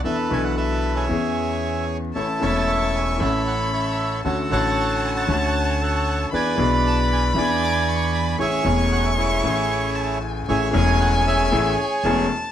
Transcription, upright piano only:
\new Staff \with { instrumentName = "Upright piano" } { \time 4/4 \key a \major \tempo 4 = 115 <e, e b d' a'>8 <b,, b, e b d' a'>4. <e, e b cis' gis'>2 | <a,, a, e a cis' a'>8 <e,, e, e a cis' a'>4. <a,, a, e a cis' a'>2 | <d, d a cis' fis'>8 <a,, a, d a cis' fis'>4. <d, d a cis' fis'>2 | <e, e b d' gis'>8 <b,, b, e b d' gis'>4. <e, e b d' gis'>2 |
<a,, a, e a cis' gis'>8 <e,, e, e a cis' gis'>4. <a,, a, e a cis' gis'>2 | <a,, a, e a cis' gis'>8 <e,, e, e a cis' gis'>4. <a,, a, e a cis' gis'>8 r8 <e,, e, e a cis' gis'>8 r8 | }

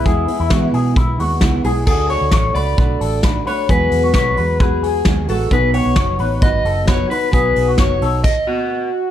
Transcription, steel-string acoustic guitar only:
\new Staff \with { instrumentName = "Steel-string acoustic guitar" } { \time 4/4 \key e \major \tempo 4 = 132 <e, b, e gis b e'>8 <e gis b e'>8 <e, b, e gis b e'>4 <e gis b e'>8 <e gis b e'>8 <e, b, e gis b e'>8 <e gis b e'>8 | <d a d' fis'>4 <d a>8 <a d' fis'>8 <d a d' fis'>4 <d a d' fis'>8 <a d' fis'>8 | <e, b, fis gis b fis'>4 <fis gis b fis'>8 <fis gis b fis'>8 <fis gis b fis'>4 <fis gis b fis'>8 <fis gis b fis'>8 | <b, fis b dis' fis'>4 <fis b dis' fis'>8 <b dis' fis'>8 <fis b dis' fis'>4 <fis b dis' fis'>8 <b dis' fis'>8 |
<b, fis b dis' fis'>4 <fis b dis'>8 <b dis' fis'>8 r2 | }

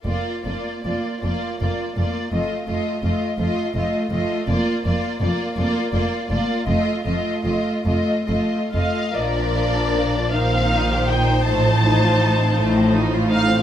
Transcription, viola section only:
\new Staff \with { instrumentName = "Viola section" } { \time 6/8 \key bes \major \tempo 4. = 54 << { r2. | r2. | r2. | r2. |
d'4. ees'4.~ | ees'2. | } \\ { bes8 bes8 bes8 bes8 bes8 bes8 | a8 a8 a8 a8 a8 a8 | bes8 bes8 bes8 bes8 bes8 bes8 | a8 a8 a8 a8 a8 a8 |
f4. ees4. | f2. | } >> }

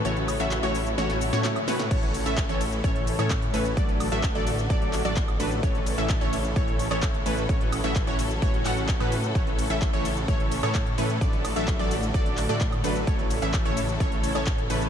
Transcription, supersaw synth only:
\new Staff \with { instrumentName = "Supersaw synth" } { \time 4/4 \key a \major \tempo 4 = 129 <e a cis' fis' cis''>8. <e a cis' fis' e''>8 <e a cis' fis' cis''>16 r8 <e a cis' fis' cis''>8. <e a cis' fis' cis''>16 r8 <e a cis' fis' b'>8 | <e a cis' a' cis''>8. <e a cis' a' e''>8 <e a cis' a' cis''>16 r8 <e a cis' a' cis''>8. <e a cis' a' cis''>16 r8 <e a cis' a' b'>8 | <fis a d' a' d''>8. <fis a d' a' e''>8 <fis a d' a' d''>16 r8 <fis a d' a' d''>8. <fis a d' a' d''>16 r8 <fis a d' a' b'>8 | <e a cis' a' cis''>8. <e a cis' a' e''>8 <e a cis' a' cis''>16 r8 <e a cis' a' cis''>8. <e a cis' a' cis''>16 r8 <e a cis' a' b'>8 |
<e a cis' fis' cis''>8. <e a cis' fis' e''>8 <e a cis' fis' cis''>16 r8 <e a cis' fis' cis''>8 <e a cis' fis' fis''>8. <e a cis' fis' b'>16 r8 | <e a cis' a' cis''>8. <e a cis' a' e''>8 <e a cis' a' cis''>16 r8 <e a cis' a' cis''>8. <e a cis' a' cis''>16 r8 <e a cis' a' b'>8 | <fis a d' a' d''>8. <fis a d' a' e''>8 <fis a d' a' d''>16 r8 <fis a d' a' d''>8. <fis a d' a' d''>16 r8 <fis a d' a' b'>8 | <e a cis' a' cis''>8. <e a cis' a' e''>8 <e a cis' a' cis''>16 r8 <e a cis' a' cis''>8. <e a cis' a' cis''>16 r8 <e a cis' a' b'>8 | }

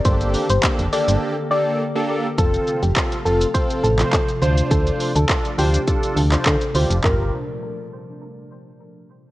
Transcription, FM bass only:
\new Staff \with { instrumentName = "FM bass" } { \clef bass \time 4/4 \key g \minor \tempo 4 = 103 g,,8. g,,16 r16 f,,16 r16 g,,16 r2 | f,,8 r16 f,,16 r8 f,,8 r8 a,,8 r8 d,8 | d,8 r16 d,16 r8 d,8 r8 d,8 d16 r16 d,16 f,,16 | g,,8 r2. r8 | }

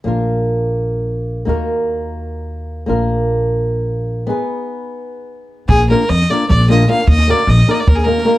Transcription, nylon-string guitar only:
\new Staff \with { instrumentName = "Nylon-string guitar" } { \time 7/8 \tempo 4 = 150 <bes d' f' bes'>2.~ <bes d' f' bes'>8 | <bes ees' ges' bes'>2.~ <bes ees' ges' bes'>8 | <bes d' f' bes'>2.~ <bes d' f' bes'>8 | <ces' ees' aes' ces''>2.~ <ces' ees' aes' ces''>8 |
r8 <bes d' f' bes'>8 r8 <bes d' f' bes'>8 r8 <bes d' f' bes'>8 <bes d' f' bes'>8 | r8 <bes ees' ges' bes'>8 r8 <bes ees' ges' bes'>8 r8 <bes ees' ges' bes'>8 <bes ees' ges' bes'>8 | }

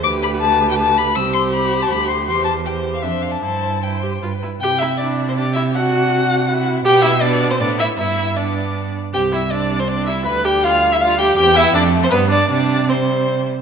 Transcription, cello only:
\new Staff \with { instrumentName = "Cello" } { \clef bass \time 3/4 \key c \major \tempo 4 = 160 d,2. | c,2 d,4 | e,2 f,4 | g,2 g,8 r8 |
c2.~ | c2. | b,2 a,4 | g,2~ g,8 r8 |
c,2. | d,2. | e,4 f,4 g,4 | c2~ c8 r8 | }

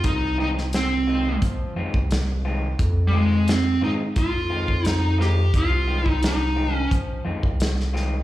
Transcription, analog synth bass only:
\new Staff \with { instrumentName = "Analog synth bass" } { \clef bass \time 4/4 \key f \minor \tempo 4 = 87 c,2 f8 f,16 c,4~ c,16 | f,4. aes,8 f,8. f,4~ f,16 | c,2 f8 f,16 c,4~ c,16 | }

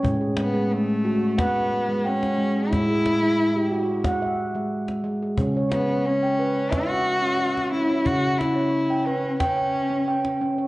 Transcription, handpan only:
<<
  \new Staff \with { instrumentName = "Handpan" } { \time 4/4 \key a \lydian \tempo 4 = 90 << { cis''16 gis'8 gis'8. r4. g''8. gis'16~ | gis'16 gis'8 gis'8 g'8. r16 e''8. r8. gis'16~ | gis'16 cis''8 cis''8 g''8. r16 e''8. e''8. cis''16~ | cis''8 r16 cis''8 g''8. r16 g''8. g''8. cis''16 | } \\ { gis8 r16 gis8 r16 fis'8 fis''8 r16 gis8 r16 gis8 | gis8 r16 gis8 r16 fis'8 fis''8 r16 gis8 r16 gis8 | cis'8 r16 cis'8 r16 b'8 e''8 r16 cis'8 r16 cis'8 | cis'8 r16 cis'8 r16 b'8 g''8 r16 cis'8 r16 cis'8 | } >> }
  \new Staff \with { instrumentName = "Handpan" } { \clef bass \time 4/4 \key a \lydian a,1 | a,1 | cis1 | cis1 | }
>>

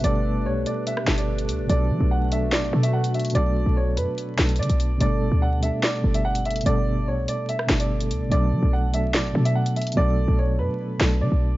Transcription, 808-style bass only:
\new Staff \with { instrumentName = "808-style bass" } { \clef bass \time 4/4 \key g \lydian \tempo 4 = 145 g,,4 b,,8 r4 g,,4 d,16 g,,16 | b,,8 fis16 b,,4~ b,,16 a,,8 b,4. | b,,8. b,,8. fis,16 r8. b,,8 d16 b,,8. | g,,8. d,4 r8. g,,4. |
g,,4 b,,8 r4 g,,4 d,16 g,,16 | b,,8 fis16 b,,4~ b,,16 a,,8 b,4. | b,,8. b,,8. fis,16 r8. b,,8 d16 b,,8. | }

